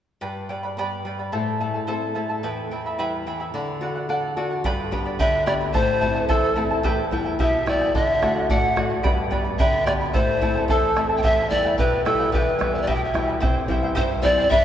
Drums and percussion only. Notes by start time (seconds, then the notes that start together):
4.65 bombo low
4.93 bombo low
5.20 bombo low
5.47 bombo rim
5.75 bombo low
6.02 bombo low
6.29 bombo low
6.84 bombo low
7.12 bombo low
7.40 bombo low
7.67 bombo rim
7.95 bombo low
8.23 bombo rim, bombo low
8.50 bombo low
8.77 bombo rim, bombo low
9.05 bombo low
9.32 bombo low
9.60 bombo low
9.87 bombo rim
10.14 bombo low
10.42 bombo low
10.69 bombo low
10.97 bombo rim
11.24 bombo low
11.52 bombo low
11.79 bombo low
12.06 bombo rim
12.34 bombo low
12.61 bombo rim, bombo low
12.88 bombo low
13.15 bombo rim, bombo low
13.43 bombo low
13.69 bombo low
13.97 bombo low
14.24 bombo low
14.52 bombo low